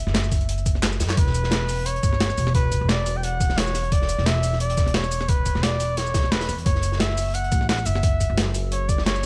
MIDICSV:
0, 0, Header, 1, 4, 480
1, 0, Start_track
1, 0, Tempo, 342857
1, 1645, Time_signature, 4, 2, 24, 8
1, 12963, End_track
2, 0, Start_track
2, 0, Title_t, "Flugelhorn"
2, 0, Program_c, 0, 56
2, 0, Note_on_c, 0, 76, 120
2, 1166, Note_off_c, 0, 76, 0
2, 1550, Note_on_c, 0, 73, 79
2, 1645, Note_on_c, 0, 71, 107
2, 1666, Note_off_c, 0, 73, 0
2, 2607, Note_on_c, 0, 73, 117
2, 2628, Note_off_c, 0, 71, 0
2, 3561, Note_off_c, 0, 73, 0
2, 3569, Note_on_c, 0, 71, 111
2, 4047, Note_on_c, 0, 74, 107
2, 4068, Note_off_c, 0, 71, 0
2, 4435, Note_on_c, 0, 79, 86
2, 4456, Note_off_c, 0, 74, 0
2, 4530, Note_on_c, 0, 78, 121
2, 4551, Note_off_c, 0, 79, 0
2, 5011, Note_on_c, 0, 73, 108
2, 5032, Note_off_c, 0, 78, 0
2, 5493, Note_on_c, 0, 74, 114
2, 5514, Note_off_c, 0, 73, 0
2, 5971, Note_on_c, 0, 76, 111
2, 5992, Note_off_c, 0, 74, 0
2, 6442, Note_off_c, 0, 76, 0
2, 6451, Note_on_c, 0, 74, 108
2, 6932, Note_on_c, 0, 73, 103
2, 6953, Note_off_c, 0, 74, 0
2, 7407, Note_on_c, 0, 71, 108
2, 7428, Note_off_c, 0, 73, 0
2, 7884, Note_on_c, 0, 74, 107
2, 7905, Note_off_c, 0, 71, 0
2, 8363, Note_on_c, 0, 73, 107
2, 8384, Note_off_c, 0, 74, 0
2, 8843, Note_on_c, 0, 71, 99
2, 8864, Note_off_c, 0, 73, 0
2, 9212, Note_off_c, 0, 71, 0
2, 9324, Note_on_c, 0, 73, 105
2, 9770, Note_off_c, 0, 73, 0
2, 9802, Note_on_c, 0, 76, 104
2, 10283, Note_on_c, 0, 78, 117
2, 10304, Note_off_c, 0, 76, 0
2, 10759, Note_off_c, 0, 78, 0
2, 10768, Note_on_c, 0, 78, 110
2, 11000, Note_on_c, 0, 76, 107
2, 11021, Note_off_c, 0, 78, 0
2, 11832, Note_off_c, 0, 76, 0
2, 12205, Note_on_c, 0, 73, 105
2, 12443, Note_on_c, 0, 74, 101
2, 12464, Note_off_c, 0, 73, 0
2, 12676, Note_off_c, 0, 74, 0
2, 12684, Note_on_c, 0, 73, 104
2, 12963, Note_off_c, 0, 73, 0
2, 12963, End_track
3, 0, Start_track
3, 0, Title_t, "Upright bass"
3, 0, Program_c, 1, 32
3, 95, Note_on_c, 1, 30, 90
3, 1405, Note_on_c, 1, 42, 80
3, 1426, Note_off_c, 1, 30, 0
3, 1623, Note_off_c, 1, 42, 0
3, 1645, Note_on_c, 1, 28, 102
3, 2827, Note_off_c, 1, 28, 0
3, 2846, Note_on_c, 1, 31, 94
3, 3307, Note_off_c, 1, 31, 0
3, 3328, Note_on_c, 1, 28, 93
3, 3914, Note_off_c, 1, 28, 0
3, 3936, Note_on_c, 1, 28, 96
3, 5834, Note_off_c, 1, 28, 0
3, 5857, Note_on_c, 1, 28, 94
3, 7755, Note_off_c, 1, 28, 0
3, 7774, Note_on_c, 1, 28, 89
3, 9086, Note_on_c, 1, 40, 81
3, 9107, Note_off_c, 1, 28, 0
3, 9303, Note_off_c, 1, 40, 0
3, 9325, Note_on_c, 1, 30, 100
3, 10507, Note_off_c, 1, 30, 0
3, 10526, Note_on_c, 1, 33, 94
3, 10988, Note_off_c, 1, 33, 0
3, 11007, Note_on_c, 1, 30, 97
3, 11594, Note_off_c, 1, 30, 0
3, 11614, Note_on_c, 1, 30, 95
3, 12963, Note_off_c, 1, 30, 0
3, 12963, End_track
4, 0, Start_track
4, 0, Title_t, "Drums"
4, 94, Note_on_c, 9, 38, 35
4, 198, Note_off_c, 9, 38, 0
4, 198, Note_on_c, 9, 38, 113
4, 201, Note_on_c, 9, 42, 92
4, 205, Note_off_c, 9, 38, 0
4, 205, Note_off_c, 9, 42, 0
4, 205, Note_on_c, 9, 38, 118
4, 205, Note_on_c, 9, 42, 103
4, 333, Note_on_c, 9, 82, 29
4, 345, Note_off_c, 9, 38, 0
4, 345, Note_off_c, 9, 42, 0
4, 443, Note_off_c, 9, 82, 0
4, 443, Note_on_c, 9, 46, 73
4, 443, Note_on_c, 9, 82, 62
4, 444, Note_on_c, 9, 36, 103
4, 448, Note_on_c, 9, 42, 73
4, 573, Note_off_c, 9, 42, 0
4, 573, Note_on_c, 9, 42, 39
4, 583, Note_off_c, 9, 46, 0
4, 583, Note_off_c, 9, 82, 0
4, 584, Note_off_c, 9, 36, 0
4, 684, Note_off_c, 9, 42, 0
4, 684, Note_on_c, 9, 42, 98
4, 685, Note_off_c, 9, 42, 0
4, 685, Note_on_c, 9, 42, 78
4, 807, Note_off_c, 9, 42, 0
4, 807, Note_on_c, 9, 42, 39
4, 813, Note_on_c, 9, 82, 30
4, 924, Note_off_c, 9, 42, 0
4, 924, Note_off_c, 9, 82, 0
4, 924, Note_on_c, 9, 36, 101
4, 924, Note_on_c, 9, 42, 71
4, 924, Note_on_c, 9, 82, 60
4, 925, Note_off_c, 9, 42, 0
4, 925, Note_on_c, 9, 42, 68
4, 1053, Note_on_c, 9, 40, 34
4, 1064, Note_off_c, 9, 36, 0
4, 1064, Note_off_c, 9, 82, 0
4, 1065, Note_off_c, 9, 42, 0
4, 1157, Note_on_c, 9, 42, 88
4, 1161, Note_on_c, 9, 38, 101
4, 1164, Note_off_c, 9, 38, 0
4, 1164, Note_off_c, 9, 42, 0
4, 1164, Note_on_c, 9, 38, 114
4, 1164, Note_on_c, 9, 39, 114
4, 1164, Note_on_c, 9, 42, 100
4, 1193, Note_off_c, 9, 40, 0
4, 1294, Note_on_c, 9, 82, 27
4, 1304, Note_off_c, 9, 38, 0
4, 1304, Note_off_c, 9, 39, 0
4, 1304, Note_off_c, 9, 42, 0
4, 1397, Note_on_c, 9, 42, 84
4, 1404, Note_on_c, 9, 38, 111
4, 1405, Note_off_c, 9, 82, 0
4, 1405, Note_on_c, 9, 46, 79
4, 1405, Note_on_c, 9, 82, 64
4, 1523, Note_off_c, 9, 42, 0
4, 1523, Note_on_c, 9, 42, 81
4, 1533, Note_off_c, 9, 42, 0
4, 1533, Note_on_c, 9, 39, 82
4, 1533, Note_on_c, 9, 42, 39
4, 1538, Note_off_c, 9, 38, 0
4, 1538, Note_on_c, 9, 38, 109
4, 1545, Note_off_c, 9, 46, 0
4, 1545, Note_off_c, 9, 82, 0
4, 1643, Note_off_c, 9, 42, 0
4, 1643, Note_on_c, 9, 42, 95
4, 1645, Note_on_c, 9, 36, 127
4, 1651, Note_off_c, 9, 42, 0
4, 1651, Note_on_c, 9, 42, 85
4, 1673, Note_off_c, 9, 39, 0
4, 1678, Note_off_c, 9, 38, 0
4, 1778, Note_on_c, 9, 38, 54
4, 1785, Note_off_c, 9, 36, 0
4, 1791, Note_off_c, 9, 42, 0
4, 1881, Note_on_c, 9, 42, 60
4, 1883, Note_off_c, 9, 42, 0
4, 1883, Note_on_c, 9, 42, 69
4, 1883, Note_on_c, 9, 82, 60
4, 1918, Note_off_c, 9, 38, 0
4, 2010, Note_on_c, 9, 38, 64
4, 2023, Note_off_c, 9, 42, 0
4, 2023, Note_off_c, 9, 82, 0
4, 2114, Note_off_c, 9, 38, 0
4, 2114, Note_on_c, 9, 38, 122
4, 2118, Note_on_c, 9, 42, 93
4, 2123, Note_off_c, 9, 38, 0
4, 2123, Note_off_c, 9, 42, 0
4, 2123, Note_on_c, 9, 38, 118
4, 2123, Note_on_c, 9, 42, 104
4, 2263, Note_off_c, 9, 38, 0
4, 2263, Note_off_c, 9, 42, 0
4, 2364, Note_on_c, 9, 46, 78
4, 2364, Note_on_c, 9, 82, 62
4, 2368, Note_off_c, 9, 46, 0
4, 2368, Note_on_c, 9, 46, 90
4, 2504, Note_off_c, 9, 82, 0
4, 2508, Note_off_c, 9, 46, 0
4, 2600, Note_on_c, 9, 42, 95
4, 2605, Note_off_c, 9, 42, 0
4, 2605, Note_on_c, 9, 42, 95
4, 2744, Note_off_c, 9, 42, 0
4, 2744, Note_on_c, 9, 42, 48
4, 2842, Note_off_c, 9, 42, 0
4, 2842, Note_on_c, 9, 42, 64
4, 2845, Note_on_c, 9, 36, 105
4, 2846, Note_off_c, 9, 42, 0
4, 2846, Note_on_c, 9, 42, 66
4, 2846, Note_on_c, 9, 82, 58
4, 2977, Note_on_c, 9, 40, 39
4, 2985, Note_off_c, 9, 36, 0
4, 2986, Note_off_c, 9, 42, 0
4, 2986, Note_off_c, 9, 82, 0
4, 3085, Note_on_c, 9, 42, 99
4, 3086, Note_on_c, 9, 38, 115
4, 3087, Note_off_c, 9, 38, 0
4, 3087, Note_off_c, 9, 42, 0
4, 3087, Note_on_c, 9, 38, 115
4, 3087, Note_on_c, 9, 42, 93
4, 3117, Note_off_c, 9, 40, 0
4, 3217, Note_on_c, 9, 40, 47
4, 3217, Note_on_c, 9, 82, 27
4, 3227, Note_off_c, 9, 38, 0
4, 3227, Note_off_c, 9, 42, 0
4, 3328, Note_off_c, 9, 82, 0
4, 3328, Note_on_c, 9, 46, 77
4, 3328, Note_on_c, 9, 82, 61
4, 3331, Note_on_c, 9, 42, 75
4, 3357, Note_off_c, 9, 40, 0
4, 3456, Note_on_c, 9, 40, 59
4, 3468, Note_off_c, 9, 46, 0
4, 3468, Note_off_c, 9, 82, 0
4, 3471, Note_off_c, 9, 42, 0
4, 3563, Note_on_c, 9, 42, 96
4, 3566, Note_off_c, 9, 42, 0
4, 3566, Note_on_c, 9, 36, 127
4, 3566, Note_on_c, 9, 42, 94
4, 3596, Note_off_c, 9, 40, 0
4, 3706, Note_off_c, 9, 36, 0
4, 3706, Note_off_c, 9, 42, 0
4, 3801, Note_on_c, 9, 42, 62
4, 3806, Note_on_c, 9, 36, 64
4, 3807, Note_off_c, 9, 42, 0
4, 3807, Note_on_c, 9, 42, 66
4, 3807, Note_on_c, 9, 82, 58
4, 3946, Note_off_c, 9, 36, 0
4, 3947, Note_off_c, 9, 42, 0
4, 3947, Note_off_c, 9, 82, 0
4, 4041, Note_on_c, 9, 38, 110
4, 4048, Note_off_c, 9, 38, 0
4, 4048, Note_on_c, 9, 38, 127
4, 4048, Note_on_c, 9, 42, 96
4, 4051, Note_off_c, 9, 42, 0
4, 4051, Note_on_c, 9, 42, 80
4, 4188, Note_off_c, 9, 38, 0
4, 4191, Note_off_c, 9, 42, 0
4, 4285, Note_on_c, 9, 42, 60
4, 4287, Note_on_c, 9, 46, 78
4, 4287, Note_on_c, 9, 82, 58
4, 4425, Note_off_c, 9, 42, 0
4, 4427, Note_off_c, 9, 46, 0
4, 4427, Note_off_c, 9, 82, 0
4, 4527, Note_on_c, 9, 42, 91
4, 4540, Note_off_c, 9, 42, 0
4, 4540, Note_on_c, 9, 42, 95
4, 4680, Note_off_c, 9, 42, 0
4, 4767, Note_on_c, 9, 36, 110
4, 4769, Note_on_c, 9, 42, 65
4, 4769, Note_on_c, 9, 82, 56
4, 4774, Note_off_c, 9, 42, 0
4, 4774, Note_on_c, 9, 42, 70
4, 4890, Note_on_c, 9, 38, 53
4, 4898, Note_on_c, 9, 40, 38
4, 4907, Note_off_c, 9, 36, 0
4, 4909, Note_off_c, 9, 82, 0
4, 4914, Note_off_c, 9, 42, 0
4, 5008, Note_off_c, 9, 38, 0
4, 5008, Note_on_c, 9, 38, 120
4, 5008, Note_on_c, 9, 42, 95
4, 5009, Note_off_c, 9, 38, 0
4, 5009, Note_on_c, 9, 38, 125
4, 5021, Note_off_c, 9, 42, 0
4, 5021, Note_on_c, 9, 42, 100
4, 5038, Note_off_c, 9, 40, 0
4, 5137, Note_on_c, 9, 82, 25
4, 5142, Note_off_c, 9, 38, 0
4, 5142, Note_on_c, 9, 38, 43
4, 5161, Note_off_c, 9, 42, 0
4, 5231, Note_off_c, 9, 38, 0
4, 5231, Note_on_c, 9, 38, 49
4, 5243, Note_on_c, 9, 42, 75
4, 5249, Note_off_c, 9, 82, 0
4, 5249, Note_on_c, 9, 40, 35
4, 5249, Note_on_c, 9, 46, 82
4, 5249, Note_on_c, 9, 82, 60
4, 5371, Note_off_c, 9, 38, 0
4, 5371, Note_off_c, 9, 42, 0
4, 5371, Note_on_c, 9, 42, 42
4, 5389, Note_off_c, 9, 40, 0
4, 5389, Note_off_c, 9, 46, 0
4, 5389, Note_off_c, 9, 82, 0
4, 5485, Note_off_c, 9, 42, 0
4, 5485, Note_on_c, 9, 42, 99
4, 5486, Note_off_c, 9, 42, 0
4, 5486, Note_on_c, 9, 42, 88
4, 5489, Note_on_c, 9, 36, 127
4, 5623, Note_on_c, 9, 38, 54
4, 5626, Note_off_c, 9, 42, 0
4, 5629, Note_off_c, 9, 36, 0
4, 5719, Note_on_c, 9, 42, 69
4, 5728, Note_off_c, 9, 42, 0
4, 5728, Note_on_c, 9, 42, 64
4, 5728, Note_on_c, 9, 82, 57
4, 5763, Note_off_c, 9, 38, 0
4, 5856, Note_on_c, 9, 38, 55
4, 5868, Note_off_c, 9, 42, 0
4, 5868, Note_off_c, 9, 82, 0
4, 5965, Note_off_c, 9, 38, 0
4, 5965, Note_on_c, 9, 38, 107
4, 5968, Note_off_c, 9, 38, 0
4, 5968, Note_on_c, 9, 38, 127
4, 5968, Note_on_c, 9, 42, 97
4, 5972, Note_off_c, 9, 42, 0
4, 5972, Note_on_c, 9, 42, 86
4, 6094, Note_off_c, 9, 38, 0
4, 6094, Note_on_c, 9, 38, 44
4, 6112, Note_off_c, 9, 42, 0
4, 6201, Note_on_c, 9, 42, 77
4, 6206, Note_on_c, 9, 46, 79
4, 6206, Note_on_c, 9, 82, 57
4, 6234, Note_off_c, 9, 38, 0
4, 6337, Note_on_c, 9, 38, 46
4, 6341, Note_off_c, 9, 42, 0
4, 6346, Note_off_c, 9, 46, 0
4, 6346, Note_off_c, 9, 82, 0
4, 6442, Note_on_c, 9, 42, 65
4, 6445, Note_off_c, 9, 42, 0
4, 6445, Note_on_c, 9, 42, 90
4, 6477, Note_off_c, 9, 38, 0
4, 6576, Note_off_c, 9, 42, 0
4, 6576, Note_on_c, 9, 42, 84
4, 6682, Note_on_c, 9, 38, 51
4, 6683, Note_off_c, 9, 42, 0
4, 6683, Note_on_c, 9, 42, 65
4, 6683, Note_on_c, 9, 82, 57
4, 6687, Note_on_c, 9, 36, 108
4, 6811, Note_on_c, 9, 40, 39
4, 6822, Note_off_c, 9, 38, 0
4, 6823, Note_off_c, 9, 42, 0
4, 6823, Note_off_c, 9, 82, 0
4, 6825, Note_on_c, 9, 42, 55
4, 6827, Note_off_c, 9, 36, 0
4, 6919, Note_off_c, 9, 42, 0
4, 6919, Note_on_c, 9, 38, 126
4, 6919, Note_on_c, 9, 42, 94
4, 6923, Note_off_c, 9, 42, 0
4, 6923, Note_on_c, 9, 42, 84
4, 6929, Note_off_c, 9, 38, 0
4, 6929, Note_on_c, 9, 38, 123
4, 6951, Note_off_c, 9, 40, 0
4, 7049, Note_on_c, 9, 40, 49
4, 7049, Note_on_c, 9, 82, 26
4, 7063, Note_off_c, 9, 42, 0
4, 7069, Note_off_c, 9, 38, 0
4, 7160, Note_off_c, 9, 82, 0
4, 7160, Note_on_c, 9, 46, 83
4, 7160, Note_on_c, 9, 82, 60
4, 7168, Note_on_c, 9, 42, 66
4, 7189, Note_off_c, 9, 40, 0
4, 7289, Note_on_c, 9, 40, 60
4, 7300, Note_off_c, 9, 46, 0
4, 7300, Note_off_c, 9, 82, 0
4, 7308, Note_off_c, 9, 42, 0
4, 7399, Note_on_c, 9, 42, 85
4, 7406, Note_on_c, 9, 36, 127
4, 7412, Note_off_c, 9, 42, 0
4, 7412, Note_on_c, 9, 42, 90
4, 7429, Note_off_c, 9, 40, 0
4, 7546, Note_off_c, 9, 36, 0
4, 7552, Note_off_c, 9, 42, 0
4, 7635, Note_on_c, 9, 42, 72
4, 7641, Note_off_c, 9, 42, 0
4, 7641, Note_on_c, 9, 42, 63
4, 7641, Note_on_c, 9, 82, 59
4, 7645, Note_on_c, 9, 36, 60
4, 7772, Note_on_c, 9, 38, 38
4, 7781, Note_off_c, 9, 42, 0
4, 7781, Note_off_c, 9, 82, 0
4, 7785, Note_off_c, 9, 36, 0
4, 7881, Note_off_c, 9, 38, 0
4, 7881, Note_on_c, 9, 38, 125
4, 7884, Note_off_c, 9, 38, 0
4, 7884, Note_on_c, 9, 38, 124
4, 7884, Note_on_c, 9, 42, 94
4, 7898, Note_off_c, 9, 42, 0
4, 7898, Note_on_c, 9, 42, 81
4, 8024, Note_off_c, 9, 38, 0
4, 8038, Note_off_c, 9, 42, 0
4, 8120, Note_on_c, 9, 46, 83
4, 8120, Note_on_c, 9, 82, 56
4, 8124, Note_on_c, 9, 42, 70
4, 8260, Note_off_c, 9, 46, 0
4, 8260, Note_off_c, 9, 82, 0
4, 8264, Note_off_c, 9, 42, 0
4, 8359, Note_on_c, 9, 42, 82
4, 8361, Note_off_c, 9, 42, 0
4, 8361, Note_on_c, 9, 42, 84
4, 8369, Note_on_c, 9, 38, 105
4, 8491, Note_on_c, 9, 82, 26
4, 8501, Note_off_c, 9, 42, 0
4, 8509, Note_off_c, 9, 38, 0
4, 8599, Note_on_c, 9, 38, 118
4, 8603, Note_off_c, 9, 82, 0
4, 8603, Note_on_c, 9, 42, 62
4, 8603, Note_on_c, 9, 82, 58
4, 8605, Note_on_c, 9, 36, 112
4, 8734, Note_on_c, 9, 40, 35
4, 8739, Note_off_c, 9, 38, 0
4, 8743, Note_off_c, 9, 42, 0
4, 8743, Note_off_c, 9, 82, 0
4, 8745, Note_off_c, 9, 36, 0
4, 8843, Note_on_c, 9, 42, 65
4, 8845, Note_off_c, 9, 42, 0
4, 8845, Note_on_c, 9, 38, 125
4, 8845, Note_on_c, 9, 42, 91
4, 8874, Note_off_c, 9, 40, 0
4, 8970, Note_off_c, 9, 38, 0
4, 8970, Note_on_c, 9, 38, 102
4, 8972, Note_on_c, 9, 82, 26
4, 8975, Note_off_c, 9, 42, 0
4, 8975, Note_on_c, 9, 42, 75
4, 9084, Note_off_c, 9, 82, 0
4, 9084, Note_on_c, 9, 40, 33
4, 9084, Note_on_c, 9, 46, 86
4, 9084, Note_on_c, 9, 82, 62
4, 9110, Note_off_c, 9, 38, 0
4, 9115, Note_off_c, 9, 42, 0
4, 9216, Note_on_c, 9, 42, 63
4, 9224, Note_off_c, 9, 40, 0
4, 9224, Note_off_c, 9, 46, 0
4, 9224, Note_off_c, 9, 82, 0
4, 9322, Note_off_c, 9, 42, 0
4, 9322, Note_on_c, 9, 42, 86
4, 9325, Note_on_c, 9, 36, 127
4, 9330, Note_off_c, 9, 42, 0
4, 9330, Note_on_c, 9, 42, 82
4, 9454, Note_on_c, 9, 38, 49
4, 9465, Note_off_c, 9, 36, 0
4, 9470, Note_off_c, 9, 42, 0
4, 9553, Note_on_c, 9, 42, 65
4, 9562, Note_off_c, 9, 42, 0
4, 9562, Note_on_c, 9, 42, 63
4, 9562, Note_on_c, 9, 82, 62
4, 9594, Note_off_c, 9, 38, 0
4, 9691, Note_on_c, 9, 38, 62
4, 9702, Note_off_c, 9, 42, 0
4, 9702, Note_off_c, 9, 82, 0
4, 9794, Note_off_c, 9, 38, 0
4, 9794, Note_on_c, 9, 38, 115
4, 9802, Note_off_c, 9, 38, 0
4, 9802, Note_on_c, 9, 38, 127
4, 9802, Note_on_c, 9, 42, 92
4, 9805, Note_off_c, 9, 42, 0
4, 9805, Note_on_c, 9, 42, 86
4, 9931, Note_off_c, 9, 38, 0
4, 9931, Note_on_c, 9, 38, 43
4, 9945, Note_off_c, 9, 42, 0
4, 10043, Note_on_c, 9, 46, 85
4, 10044, Note_off_c, 9, 46, 0
4, 10044, Note_on_c, 9, 46, 83
4, 10044, Note_on_c, 9, 82, 61
4, 10071, Note_off_c, 9, 38, 0
4, 10184, Note_off_c, 9, 46, 0
4, 10184, Note_off_c, 9, 82, 0
4, 10274, Note_on_c, 9, 42, 95
4, 10286, Note_off_c, 9, 42, 0
4, 10286, Note_on_c, 9, 42, 90
4, 10419, Note_off_c, 9, 42, 0
4, 10419, Note_on_c, 9, 42, 49
4, 10524, Note_off_c, 9, 42, 0
4, 10524, Note_on_c, 9, 42, 65
4, 10525, Note_off_c, 9, 42, 0
4, 10525, Note_on_c, 9, 36, 108
4, 10525, Note_on_c, 9, 42, 64
4, 10525, Note_on_c, 9, 82, 59
4, 10653, Note_on_c, 9, 40, 34
4, 10665, Note_off_c, 9, 36, 0
4, 10665, Note_off_c, 9, 42, 0
4, 10665, Note_off_c, 9, 82, 0
4, 10768, Note_on_c, 9, 38, 124
4, 10768, Note_on_c, 9, 42, 88
4, 10770, Note_off_c, 9, 42, 0
4, 10770, Note_on_c, 9, 42, 92
4, 10793, Note_off_c, 9, 40, 0
4, 10897, Note_on_c, 9, 40, 43
4, 10897, Note_on_c, 9, 82, 25
4, 10908, Note_off_c, 9, 38, 0
4, 10910, Note_off_c, 9, 42, 0
4, 10994, Note_on_c, 9, 42, 68
4, 11005, Note_off_c, 9, 82, 0
4, 11005, Note_on_c, 9, 46, 86
4, 11005, Note_on_c, 9, 82, 65
4, 11037, Note_off_c, 9, 40, 0
4, 11134, Note_off_c, 9, 42, 0
4, 11136, Note_on_c, 9, 40, 54
4, 11145, Note_off_c, 9, 46, 0
4, 11145, Note_off_c, 9, 82, 0
4, 11241, Note_on_c, 9, 42, 100
4, 11245, Note_off_c, 9, 42, 0
4, 11245, Note_on_c, 9, 42, 91
4, 11246, Note_on_c, 9, 36, 123
4, 11276, Note_off_c, 9, 40, 0
4, 11385, Note_off_c, 9, 42, 0
4, 11386, Note_off_c, 9, 36, 0
4, 11485, Note_on_c, 9, 36, 60
4, 11488, Note_on_c, 9, 42, 68
4, 11488, Note_on_c, 9, 82, 65
4, 11490, Note_off_c, 9, 42, 0
4, 11490, Note_on_c, 9, 42, 61
4, 11625, Note_off_c, 9, 36, 0
4, 11628, Note_off_c, 9, 82, 0
4, 11630, Note_off_c, 9, 42, 0
4, 11726, Note_on_c, 9, 38, 123
4, 11726, Note_on_c, 9, 42, 91
4, 11732, Note_off_c, 9, 38, 0
4, 11732, Note_on_c, 9, 38, 126
4, 11735, Note_off_c, 9, 42, 0
4, 11735, Note_on_c, 9, 42, 81
4, 11872, Note_off_c, 9, 38, 0
4, 11875, Note_off_c, 9, 42, 0
4, 11963, Note_on_c, 9, 42, 66
4, 11963, Note_on_c, 9, 46, 81
4, 11963, Note_on_c, 9, 82, 66
4, 12103, Note_off_c, 9, 42, 0
4, 12103, Note_off_c, 9, 46, 0
4, 12103, Note_off_c, 9, 82, 0
4, 12204, Note_on_c, 9, 42, 87
4, 12205, Note_off_c, 9, 42, 0
4, 12205, Note_on_c, 9, 42, 92
4, 12345, Note_off_c, 9, 42, 0
4, 12441, Note_on_c, 9, 42, 67
4, 12445, Note_on_c, 9, 36, 105
4, 12448, Note_off_c, 9, 42, 0
4, 12448, Note_on_c, 9, 42, 61
4, 12448, Note_on_c, 9, 82, 64
4, 12576, Note_on_c, 9, 38, 52
4, 12576, Note_on_c, 9, 40, 36
4, 12585, Note_off_c, 9, 36, 0
4, 12588, Note_off_c, 9, 42, 0
4, 12588, Note_off_c, 9, 82, 0
4, 12688, Note_off_c, 9, 38, 0
4, 12688, Note_on_c, 9, 38, 127
4, 12689, Note_off_c, 9, 38, 0
4, 12689, Note_on_c, 9, 38, 121
4, 12689, Note_on_c, 9, 42, 93
4, 12691, Note_off_c, 9, 42, 0
4, 12691, Note_on_c, 9, 42, 93
4, 12716, Note_off_c, 9, 40, 0
4, 12793, Note_off_c, 9, 38, 0
4, 12793, Note_on_c, 9, 38, 43
4, 12817, Note_on_c, 9, 82, 28
4, 12831, Note_off_c, 9, 42, 0
4, 12920, Note_off_c, 9, 38, 0
4, 12920, Note_on_c, 9, 38, 48
4, 12957, Note_off_c, 9, 82, 0
4, 12963, Note_off_c, 9, 38, 0
4, 12963, End_track
0, 0, End_of_file